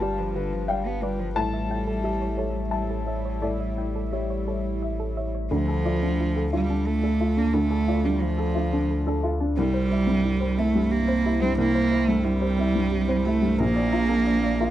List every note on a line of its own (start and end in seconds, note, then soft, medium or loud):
0.00 1.38 G1 medium
0.00 1.32 G2 medium
0.00 1.35 G3 medium
0.00 0.20 G3 medium
0.00 0.22 F4 soft
0.00 1.33 F4 medium
0.00 0.55 G4 medium
0.00 0.36 B4 medium
0.00 1.37 B4 medium
0.00 0.12 D5 medium
0.00 0.65 A5 loud
0.18 0.38 F3 medium
0.18 0.29 B4 medium
0.36 0.54 D3 medium
0.36 0.46 G4 medium
0.36 0.89 B4 medium
0.53 0.71 F3 medium
0.68 0.88 G3 medium
0.68 0.79 D5 medium
0.68 1.22 F5 medium
0.68 1.32 G5 medium
0.87 1.05 B3 medium
0.87 0.97 G4 medium
1.02 1.21 G3 medium
1.02 1.36 B4 medium
1.02 1.13 D5 medium
1.19 1.35 F3 medium
1.19 1.30 B4 medium
1.35 5.51 A1 medium
1.35 3.38 A2 medium
1.35 2.68 G3 medium
1.35 5.48 G3 medium
1.35 5.52 E4 medium
1.35 1.46 A4 medium
1.35 5.52 E5 medium
1.35 2.68 A5 medium
1.53 1.63 E5 medium
1.69 2.24 E4 soft
1.69 1.81 G5 medium
1.87 1.97 A4 medium
2.03 2.58 G4 soft
2.03 2.15 E5 medium
2.22 2.32 C#5 medium
2.37 2.49 A4 medium
2.37 2.93 C#5 soft
2.71 4.10 G3 medium
2.71 3.28 E5 soft
2.71 2.84 E5 medium
2.71 3.38 A5 medium
2.91 3.01 A4 medium
3.06 3.63 C#5 soft
3.06 3.18 E5 medium
3.25 3.36 C#5 medium
3.41 5.47 A2 soft
3.41 3.53 A4 medium
3.41 4.09 D5 medium
3.60 3.71 E5 medium
3.77 4.34 E4 soft
3.77 3.88 G5 medium
3.96 4.06 A4 medium
4.12 5.29 G3 soft
4.12 4.69 G4 soft
4.12 4.47 C#5 soft
4.12 4.23 E5 medium
4.30 4.41 C#5 medium
4.48 4.58 A4 medium
4.48 5.04 C#5 soft
4.82 5.38 E5 soft
4.82 4.93 E5 medium
5.00 5.10 A4 medium
5.17 5.52 C#5 soft
5.17 5.28 E5 medium
5.35 5.45 C#5 medium
5.51 7.50 D2 medium
5.51 9.59 D2 medium
5.51 6.49 F3 medium
5.51 9.54 A3 medium
5.51 5.62 D4 medium
5.51 9.53 F4 medium
5.51 9.53 D5 medium
5.68 5.96 A4 medium
5.85 6.13 F4 soft
5.85 5.96 D5 medium
6.02 6.13 D4 medium
6.02 6.57 D4 soft
6.20 6.30 F4 medium
6.36 6.63 A4 soft
6.36 6.47 A4 medium
6.53 6.88 G3 medium
6.53 6.63 D4 medium
6.53 6.80 F4 medium
6.70 7.24 D4 medium
6.70 6.80 A4 medium
6.86 7.40 A3 medium
6.86 6.97 A4 medium
7.03 7.14 D4 medium
7.03 7.31 A4 medium
7.20 7.48 F4 soft
7.20 7.31 A4 medium
7.37 7.56 A#3 medium
7.37 7.65 D4 soft
7.37 7.48 A4 medium
7.54 9.53 D2 medium
7.54 8.07 A3 loud
7.54 7.65 D4 medium
7.71 7.98 A4 medium
7.88 8.15 F4 medium
7.88 7.99 D5 medium
8.04 8.23 G3 medium
8.04 8.59 D4 soft
8.04 8.16 D4 loud
8.21 9.23 F3 medium
8.21 8.33 F4 medium
8.38 8.66 A4 medium
8.38 8.50 A4 medium
8.55 8.67 D4 medium
8.55 8.83 F4 medium
8.73 9.27 D4 medium
8.73 8.83 A4 medium
8.91 9.01 A4 medium
9.07 9.17 D4 loud
9.07 9.34 A4 medium
9.23 9.51 F4 medium
9.23 9.34 A4 medium
9.40 9.58 D4 medium
9.40 9.51 A4 medium
9.57 13.60 C2 medium
9.57 11.55 C2 medium
9.57 10.60 G3 loud
9.57 9.67 C4 loud
9.57 13.60 C4 medium
9.57 13.60 E4 medium
9.57 13.60 C5 medium
9.74 10.01 C5 medium
9.90 10.18 E4 medium
9.90 10.01 C5 medium
10.07 10.62 G2 medium
10.07 10.18 C4 loud
10.25 10.35 E4 medium
10.40 10.52 G4 medium
10.40 10.68 C5 medium
10.57 10.93 A3 loud
10.57 10.69 C4 medium
10.57 10.85 E4 medium
10.75 11.29 G2 medium
10.75 10.85 G4 medium
10.91 11.43 A#3 loud
10.91 11.02 G4 medium
11.08 11.18 C4 medium
11.08 11.35 C5 medium
11.25 11.52 E4 medium
11.25 11.35 G4 medium
11.42 11.69 G2 medium
11.42 11.58 C4 medium
11.42 11.52 G4 medium
11.58 13.55 C2 medium
11.58 12.11 A#3 loud
11.58 11.68 C4 loud
11.75 12.02 C5 medium
11.92 12.19 E4 medium
11.92 12.02 C5 medium
12.08 12.62 G2 medium
12.08 12.26 A3 loud
12.08 12.18 C4 medium
12.24 13.26 G3 loud
12.24 12.35 E4 medium
12.41 12.52 G4 medium
12.41 12.69 C5 medium
12.58 12.69 C4 medium
12.58 12.86 E4 medium
12.75 13.29 G2 medium
12.75 12.86 G4 medium
12.92 13.02 G4 medium
13.09 13.19 C4 loud
13.09 13.36 C5 medium
13.25 13.60 A3 loud
13.25 13.53 E4 medium
13.25 13.36 G4 medium
13.42 13.60 G2 medium
13.42 13.52 G4 medium
13.58 14.71 A#1 medium
13.58 14.71 F3 medium
13.58 14.71 A#3 loud
13.58 14.71 A#3 medium
13.58 13.69 A#4 loud
13.58 14.71 D5 medium
13.76 14.03 D5 medium
13.92 14.20 F4 medium
13.92 14.03 A#5 medium
14.09 14.65 D4 medium
14.09 14.20 A#4 loud
14.27 14.37 D5 medium
14.43 14.71 D5 medium
14.43 14.54 F5 medium
14.60 14.71 F4 medium
14.60 14.71 A#4 medium